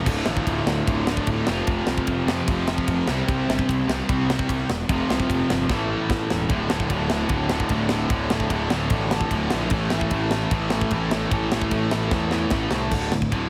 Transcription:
0.06 picked electric bass D1, distorted electric guitar D2 A2 D3, overdriven electric guitar A3 F4, kick, crash
0.26 picked electric bass A1, snare
0.37 kick
0.46 picked electric bass D1, kick, ride
0.66 picked electric bass D2, snare
0.86 picked electric bass D1, overdriven electric guitar D2 A2 D3, kick, ride
1.07 distorted electric guitar D2 A2 D3, snare
1.17 kick
1.27 picked electric bass D1, distorted electric guitar D2, kick, ride
1.31 distorted electric guitar A2 D3
1.47 picked electric bass F1, distorted electric guitar F2 C3, overdriven electric guitar A3 C4 F4, snare
1.51 distorted electric guitar F3
1.67 picked electric bass F1, kick, ride
1.87 picked electric bass C2, snare
1.98 kick
2.07 picked electric bass F1, kick, ride
2.27 picked electric bass F2, overdriven electric guitar F2 C3 F3, snare
2.48 picked electric bass F1, distorted electric guitar F2 C3 F3, kick, ride
2.68 distorted electric guitar F2 C3 F3, snare
2.78 kick
2.88 picked electric bass F1, kick, ride
3.08 picked electric bass C2, distorted electric guitar C3 G3, overdriven electric guitar E4 G4 C5, snare
3.12 distorted electric guitar C4
3.28 picked electric bass C2, kick, ride
3.48 picked electric bass G1, snare
3.59 kick
3.69 picked electric bass C2, kick, ride
3.88 picked electric bass C2, overdriven electric guitar C3 G3 C4, snare
4.09 picked electric bass C2, distorted electric guitar C3 G3 C4, kick, ride
4.29 distorted electric guitar C3 G3 C4, snare
4.39 kick
4.49 picked electric bass C2, kick, ride
4.69 picked electric bass E1, snare
4.88 picked electric bass F1, distorted electric guitar F2 C3 F3, overdriven electric guitar A3 C4 F4, kick, ride
5.10 picked electric bass C2, snare
5.20 kick
5.29 picked electric bass F1, kick, ride
5.50 picked electric bass G1, snare
5.69 picked electric bass A1, distorted electric guitar A2 E3 A3, overdriven electric guitar C#4 E4, kick, snare
5.73 overdriven electric guitar A4
6.09 picked electric bass A1, kick, snare
6.30 picked electric bass E1, snare
6.50 picked electric bass D1, distorted electric guitar D2 A2 D3, kick, ride
6.70 picked electric bass D1, distorted electric guitar D2 A2 D3, snare
6.80 kick
6.90 picked electric bass D1, distorted electric guitar D2 A2 D3, kick, ride
7.10 distorted electric guitar D2 A2 D3, snare
7.29 picked electric bass D1, distorted electric guitar D2 A2 D3, kick, ride
7.49 distorted electric guitar D2 A2 D3, snare
7.60 kick
7.69 picked electric bass D1, distorted electric guitar D2 A2 D3, kick, ride
7.89 distorted electric guitar D2 A2 D3, snare
8.10 picked electric bass D1, distorted electric guitar D2 A2 D3, kick, ride
8.30 picked electric bass D1, distorted electric guitar D2 A2 D3, snare
8.40 kick
8.50 picked electric bass D1, distorted electric guitar D2 A2 D3, kick, ride
8.70 picked electric bass D1, distorted electric guitar D2 A2 D3, snare
8.90 picked electric bass A1, distorted electric guitar D2 A2 D3, kick, ride
9.11 distorted electric guitar D2 A2 D3, snare
9.21 kick
9.31 picked electric bass D1, distorted electric guitar D2 A2 D3, kick, ride
9.50 picked electric bass A#1, distorted electric guitar D2 A2, snare
9.55 distorted electric guitar D3
9.70 picked electric bass A1, distorted electric guitar A2 E3, kick, ride
9.74 distorted electric guitar A3
9.90 picked electric bass A1, distorted electric guitar A2, snare
9.95 distorted electric guitar E3 A3
10.01 kick
10.11 picked electric bass A1, distorted electric guitar A2 E3 A3, kick, ride
10.31 distorted electric guitar A2 E3 A3, snare
10.51 picked electric bass A1, distorted electric guitar A2 E3 A3, kick, ride
10.70 distorted electric guitar A2 E3 A3, snare
10.81 kick
10.91 picked electric bass A1, distorted electric guitar A2 E3, kick, ride
10.95 distorted electric guitar A3
11.11 distorted electric guitar A2 E3 A3, snare
11.31 picked electric bass A1, distorted electric guitar A2 E3 A3, kick, ride
11.52 picked electric bass A1, distorted electric guitar A2 E3 A3, snare
11.62 kick
11.71 picked electric bass A1, distorted electric guitar A2 E3 A3, kick, ride
11.91 picked electric bass A1, distorted electric guitar A2 E3 A3, snare
12.11 picked electric bass E2, distorted electric guitar A2 E3 A3, kick, snare
12.31 distorted electric guitar A2 E3 A3, snare
12.50 picked electric bass A1, distorted electric guitar A2 E3 A3, kick, snare
12.71 picked electric bass C2, distorted electric guitar A2 E3 A3, snare
12.91 picked electric bass D1, distorted electric guitar D2 A2 D3, kick, crash
13.12 picked electric bass D1, distorted electric guitar D2 A2, snare
13.22 kick
13.32 picked electric bass D1, distorted electric guitar D2 A2 D3, kick, ride

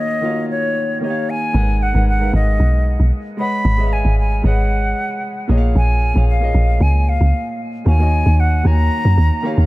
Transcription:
Already playing: grand piano D#3 A#3 F#4 C#5 F5, flute D#5
0.21 grand piano D#3 A#3 F4 C#5 F5
0.29 grand piano F#4
0.50 flute C#5
1.00 grand piano D#3 A#3 G4 C#5 D#5, flute C#5
1.10 grand piano F5
1.30 flute G#5
1.53 log drum bass G#1, grand piano G#3 D#4 A#4 B4 F#5
1.83 flute F#5
1.93 log drum bass G#1, grand piano G#3 D#4 A#4 B4 F#5
2.09 flute F#5
2.19 grand piano G#3 D#4 A#4 B4 F5
2.29 grand piano F#5
2.33 log drum bass G#1, flute D#5
2.60 log drum bass B1
3.00 log drum bass B1
3.37 grand piano G#3 G#4 B4 C#5 D#5 F#5, flute B5
3.65 log drum bass G#1
3.77 grand piano G#3 G#4 B4 C#5 D#5 E5
3.87 grand piano F5
3.93 flute G#5
4.05 log drum bass G#1
4.19 flute G#5
4.42 log drum bass G#1, grand piano G#3 G#4 B4 C#5 D#5 F#5, flute F#5
5.47 log drum bass A#1, grand piano A#2 A#3 G#4 C#5 D#5
5.58 grand piano F5
5.75 log drum bass A#1, flute G#5
6.14 log drum bass A#1, grand piano A#2 A#3 G#4 C#5 F5
6.30 flute F5
6.40 grand piano A#2 A#3 G#4 C#5 D#5
6.54 log drum bass A#1
6.81 log drum bass C#2, flute G#5
7.09 flute F5
7.21 log drum bass C#2
7.84 log drum bass D#2, grand piano D#3 A#3 F#4 C#5 F5, flute G#5
7.98 grand piano D#3 A#3 F#4 C#5 D#5
8.26 log drum bass D#2
8.40 flute F#5
8.63 log drum bass D#2, grand piano D#3 A#3 F#4 C#5 G#5, flute A#5
9.05 log drum bass F#2
9.18 log drum bass D#2
9.42 grand piano D#3 A#3 G4 C#5 F5
9.57 log drum bass D#2

